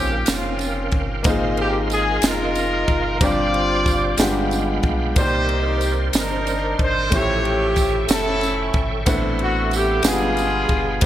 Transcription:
Already playing: A#1 A#2 C#3 C4 C#4 D#4 F4 G4 A#4 C5 F5 G5
0.26 F1, snare, ride bell, tambourine
0.31 C4 C#4 F4
0.59 ride bell, tambourine
0.91 G1, kick, ride bell
1.23 G#1 G#2 A#3 C4 D#4 A#4 D#5 C6, kick, ride bell, tambourine
1.27 G#3 F4
1.57 G4, ride bell
1.90 G#4, ride bell, tambourine
2.22 F1 A#4, snare, ride bell, tambourine
2.26 D#4 F4
2.55 ride bell, tambourine
2.88 F#1, kick, ride bell
3.21 G1 G2 G3 C4 D4 F4 G4 C5 D5 G5 D6, kick, ride bell, tambourine
3.54 ride bell
3.86 kick, ride bell, tambourine
4.17 G1 G2 G#3 B3 D4 F4 G4 B5, snare, ride bell, tambourine
4.51 ride bell, tambourine
4.83 B1, kick, ride bell
5.15 C2 C3 A#3 C4 D#4 A#4 C5 D5 C6, kick, ride bell, tambourine
5.19 D#3 G4
5.49 ride bell
5.81 ride bell, tambourine
6.13 G1 D4 D#4 A#4, snare, ride bell, tambourine
6.47 ride bell, tambourine
6.79 G#1 C5, kick, ride bell
7.10 A1 A2 A3 C#4 E4 G4 A4 E5 G5 C#6, kick, ride bell, tambourine
7.15 F3 G4 C#5
7.45 ride bell
7.76 kick, ride bell, tambourine
8.08 F1 C#4 E4 A4, snare, ride bell, tambourine
8.41 ride bell, tambourine
8.74 G#1, kick, ride bell
9.05 A1 A2 B3 C4 D4 E4 A4 E5 F#5 C6, kick, ride bell, tambourine
9.39 F#4, ride bell
9.71 G4, ride bell, tambourine
10.03 G1 B2 G#3 B3 D4 F4 F#4 G#4 F5 G5 B5, snare, ride bell, tambourine
10.07 B3 F4 G#4
10.13 G3
10.37 ride bell, tambourine
10.69 F#1, kick, ride bell
11.01 G1 G2 G3 C4 C5 D#5 G5 D#6, kick, ride bell

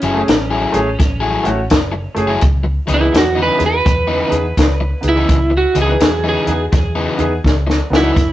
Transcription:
Already playing: C#4
0.00 F#1 F#3 A3 E4 G#4, closed hi-hat
0.04 G#4
0.14 A3 C#4 E4 G#4
0.28 A1, muted overdriven electric guitar stroke, snare, closed hi-hat
0.51 F#3 A3 E4 G#4
0.72 A1 A3 C#4 E4 G#4, closed hi-hat
0.99 A1, muted overdriven electric guitar stroke, kick, snare, closed hi-hat
1.20 F#3 A3 E4 G#4
1.44 A1 A3 C#4 E4 F#4, closed hi-hat
1.70 F#1, kick, snare, closed hi-hat
1.92 muted overdriven electric guitar stroke
2.15 F#1 A3 C#4 E4 G#4, closed hi-hat
2.28 F#3 A3 E4 G#4
2.41 C#2, kick, closed hi-hat
2.64 muted overdriven electric guitar stroke
2.86 C#2 C#3 E3 B3 D#4 E4 G#4, closed hi-hat
2.94 E4
2.99 B3 D#4 E4 G#4
3.12 E2, muted overdriven electric guitar stroke, snare, closed hi-hat
3.18 F#4
3.35 C#3 E3 B3 D#4
3.42 B4
3.57 E2 B3 D#4 E4 G#4, closed hi-hat
3.66 B4
3.85 E2, muted overdriven electric guitar stroke, kick, closed hi-hat
4.07 C#3 E3 B3 D#4
4.28 E2 B3 D#4 E4 G#4
4.32 closed hi-hat
4.57 C#2, kick, snare, closed hi-hat
4.81 muted overdriven electric guitar stroke
5.01 C#2 B3 D#4 E4 G#4, closed hi-hat
5.09 E4
5.16 C#3 E3 B3 D#4
5.29 C#2, kick, closed hi-hat
5.50 muted overdriven electric guitar stroke
5.57 F#4
5.73 C#2 C#3 E3 B3 D#4 E4 G#4, closed hi-hat
5.82 G#4
5.87 B3 D#4 E4 B4
6.00 E2, muted overdriven electric guitar stroke, snare, closed hi-hat
6.24 C#3 E3 B3 D#4
6.29 G#4
6.47 E2 B3 D#4 E4 G#4, closed hi-hat
6.72 E2, muted overdriven electric guitar stroke, kick, snare, closed hi-hat
6.96 C#3 E3 B3 D#4
7.18 E2 B3 D#4 E4 G#4, closed hi-hat
7.44 C#2, kick, snare
7.67 muted overdriven electric guitar stroke, snare
7.90 C#2 B3 D#4 E4 F#4, snare
7.96 E4
8.03 C#3 E3 B3 D#4
8.16 F#1, kick, snare, closed hi-hat

